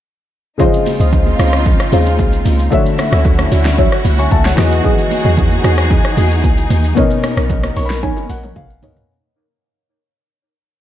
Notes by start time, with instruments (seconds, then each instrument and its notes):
0.58 grand piano C#3 G#3 F4 C5, string section C#3 C4 D#4 F4, synth stab F4 C5 D#5, kick, low conga, shaker
0.62 grand piano D#5
0.74 shaker
0.86 open hi-hat, high conga, shaker
1.00 log drum bass C#2, synth stab F4 C5 D#5, shaker
1.13 kick, low conga, shaker
1.27 high conga, shaker
1.39 log drum bass C#2, synth stab F4 C5 D#5, cross-stick, open hi-hat, high conga, shaker
1.53 cross-stick, shaker
1.66 kick, low conga, shaker
1.80 cross-stick, shaker
1.92 log drum bass D#2, grand piano C#3 G#3 F4 C5 F5, synth stab F4 C5 D#5, open hi-hat, high conga, shaker
2.06 shaker
2.19 log drum bass C2, kick, high conga, shaker
2.33 shaker
2.45 log drum bass C#2, open hi-hat, high conga, shaker
2.59 shaker
2.70 grand piano D3 A3 F#4 C#5, string section D3 C#4 E4 F#4, synth stab F#4 C#5 E5, kick, low conga, shaker
2.74 grand piano E5
2.86 shaker
2.99 cross-stick, open hi-hat, high conga, shaker
3.12 log drum bass D2, synth stab F#4 C#5 E5, cross-stick, shaker
3.25 kick, low conga, shaker
3.39 cross-stick, high conga, shaker
3.51 log drum bass D2, synth stab F#4 C#5 E5, open hi-hat, high conga, shaker
3.66 snare, shaker
3.78 synth stab F#4 C#5 E5, kick, low conga, shaker
3.92 cross-stick, shaker
4.05 log drum bass C#2, open hi-hat, high conga, shaker
4.18 synth stab F#4 C#5 E5, grand piano G#5 C#6, shaker
4.31 log drum bass C#2, grand piano E5 A5, kick, high conga, shaker
4.45 grand piano C#5 F#5, snare, shaker
4.56 log drum bass E2, grand piano E3 B3 F#4 G#4, string section E3 D#4 G#4, synth stab F#4 G#4 D#5, cross-stick, snare, open hi-hat, high conga, shaker
4.60 grand piano D#5
4.72 shaker
4.84 synth stab F#4 G#4 D#5, kick, low conga, shaker
4.98 shaker
5.11 open hi-hat, high conga, shaker
5.24 log drum bass E2, synth stab F#4 G#4 D#5, shaker
5.37 kick, low conga, shaker
5.51 high conga, shaker
5.64 log drum bass E2, synth stab F#4 G#4 D#5, cross-stick, open hi-hat, high conga, shaker
5.78 cross-stick, shaker
5.91 kick, low conga, shaker
6.05 cross-stick, shaker
6.17 log drum bass E2, synth stab F#4 G#4 D#5, open hi-hat, high conga, shaker
6.31 shaker
6.43 log drum bass C#2, kick, high conga, shaker
6.58 shaker
6.70 log drum bass D#2, open hi-hat, high conga, shaker
6.84 shaker
6.95 grand piano B2 B3 C#4 A#4, string section B3 A#4, synth stab D#4 A#4 C#5, kick, low conga, shaker
6.99 grand piano D#5
7.11 shaker
7.23 cross-stick, open hi-hat, high conga, shaker
7.37 log drum bass B1, synth stab D#4 A#4 C#5, cross-stick, shaker
7.50 kick, low conga, shaker
7.63 cross-stick, high conga, shaker
7.76 log drum bass B1, synth stab D#4 A#4 C#5, grand piano C#6, open hi-hat, high conga, shaker
7.85 grand piano B5
7.90 snare, shaker
8.03 synth stab D#4 A#4 C#5, grand piano G#5, kick, high tom, low conga, shaker
8.17 high tom, shaker
8.30 log drum bass A#1, grand piano F#5, open hi-hat, high conga, shaker
8.43 synth stab D#4 A#4 C#5, mid tom, shaker
8.56 log drum bass A#1, grand piano F5, kick, mid tom, high conga, shaker
8.70 shaker
8.82 log drum bass C#2, grand piano B2 B3 C#4 A#4 C#5 D#5, synth stab D#4 A#4 C#5, floor tom, open hi-hat, high conga, shaker
8.96 floor tom, shaker